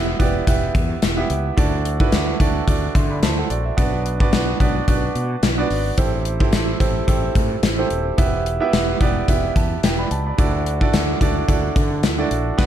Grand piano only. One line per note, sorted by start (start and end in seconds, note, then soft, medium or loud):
0.00 0.19 B3 medium
0.00 0.19 E4 medium
0.00 0.20 G4 medium
0.00 0.20 B4 medium
0.00 0.48 E5 loud
0.19 0.43 B3 medium
0.19 0.43 E4 medium
0.19 0.43 G4 medium
0.19 0.43 B4 medium
0.19 0.43 D5 medium
0.47 1.03 B3 medium
0.47 1.04 E4 medium
0.47 1.04 G4 medium
0.47 1.04 B4 medium
0.47 1.04 E5 medium
1.17 1.50 B3 medium
1.17 1.51 E4 medium
1.17 1.51 G4 medium
1.17 1.51 B4 medium
1.17 1.51 E5 medium
1.57 1.91 D4 medium
1.57 1.92 E4 medium
1.57 1.92 F#4 medium
1.57 1.92 A4 medium
1.57 1.92 D5 loud
2.00 2.33 D4 medium
2.00 2.33 E4 medium
2.00 2.33 F#4 medium
2.00 2.34 A4 medium
2.00 2.34 B4 loud
2.40 2.63 D4 medium
2.40 2.63 E4 medium
2.40 2.63 F#4 medium
2.40 2.63 A4 medium
2.40 2.64 D5 loud
2.67 3.24 D4 medium
2.67 3.24 E4 medium
2.67 2.95 F#4 medium
2.67 2.95 A4 medium
2.67 2.96 D5 medium
2.95 3.10 E5 medium
2.95 3.10 C6 medium
3.11 3.23 D5 medium
3.11 3.22 B5 medium
3.23 3.38 C5 medium
3.23 3.37 A5 medium
3.38 3.50 A4 medium
3.38 3.50 F#5 medium
3.50 3.65 F#4 medium
3.50 3.64 D5 medium
3.65 3.92 E5 medium
3.77 4.12 B3 medium
3.77 4.12 D4 medium
3.77 4.12 F#4 medium
3.77 4.12 B4 medium
3.77 4.12 D5 loud
4.20 4.53 B3 medium
4.20 4.54 D4 medium
4.20 4.54 F#4 medium
4.20 4.54 B4 medium
4.20 4.54 D5 loud
4.60 4.83 B3 medium
4.60 4.83 D4 medium
4.60 4.83 F#4 medium
4.60 4.84 B4 medium
4.60 4.84 D5 loud
4.88 5.44 B3 medium
4.88 5.44 D4 medium
4.88 5.44 F#4 medium
4.88 5.45 B4 medium
4.88 5.45 D5 medium
5.57 5.91 B3 medium
5.57 5.91 D4 medium
5.57 5.91 F#4 medium
5.57 5.91 B4 medium
5.57 5.92 D5 medium
5.97 6.32 C4 medium
5.97 6.32 E4 medium
5.97 6.32 G4 medium
5.97 6.32 A4 medium
5.97 6.33 C5 loud
6.40 6.73 C4 medium
6.40 6.74 E4 medium
6.40 6.74 G4 medium
6.40 6.74 A4 medium
6.40 6.74 C5 medium
6.80 7.03 C4 medium
6.80 7.03 E4 medium
6.80 7.03 G4 medium
6.80 7.04 A4 medium
6.80 7.04 C5 loud
7.07 7.64 C4 medium
7.07 7.64 E4 medium
7.07 7.64 G4 medium
7.07 7.65 A4 medium
7.07 7.65 C5 medium
7.78 8.11 C4 medium
7.78 8.11 E4 medium
7.78 8.12 G4 medium
7.78 8.12 A4 medium
7.78 8.12 C5 medium
8.18 8.52 B3 medium
8.18 8.52 E4 medium
8.18 8.53 G4 medium
8.18 8.53 B4 medium
8.18 8.53 E5 loud
8.60 8.94 B3 medium
8.60 8.94 E4 medium
8.60 8.94 G4 medium
8.60 8.94 B4 medium
8.60 8.94 E5 loud
9.01 9.24 B3 medium
9.01 9.24 E4 medium
9.01 9.24 G4 medium
9.01 9.24 B4 medium
9.01 9.24 D5 loud
9.28 9.84 B3 medium
9.28 9.85 E4 medium
9.28 9.85 G4 medium
9.28 9.56 B4 medium
9.28 9.56 E5 medium
9.56 9.82 A5 medium
9.84 9.98 B4 medium
9.84 9.98 G5 medium
9.99 10.11 D5 medium
9.99 10.10 B5 medium
10.12 10.26 A5 medium
10.26 10.38 D5 medium
10.26 10.52 B5 medium
10.38 10.73 D4 medium
10.38 10.73 E4 medium
10.38 10.73 F#4 medium
10.38 10.73 A4 medium
10.38 10.73 D5 loud
10.81 11.14 D4 medium
10.81 11.14 E4 medium
10.81 11.14 F#4 medium
10.81 11.14 A4 medium
10.81 11.15 D5 loud
11.20 11.44 D4 medium
11.20 11.44 E4 medium
11.20 11.44 F#4 medium
11.20 11.44 A4 medium
11.20 11.44 D5 loud
11.48 12.04 D4 medium
11.48 12.05 E4 medium
11.48 12.05 F#4 medium
11.48 12.05 A4 medium
11.48 12.05 D5 medium
12.18 12.52 D4 medium
12.18 12.52 E4 medium
12.18 12.52 F#4 medium
12.18 12.52 A4 medium
12.18 12.52 D5 medium
12.58 12.66 B3 loud
12.58 12.66 D4 loud
12.58 12.66 F#4 loud
12.58 12.66 B4 loud
12.58 12.66 D5 loud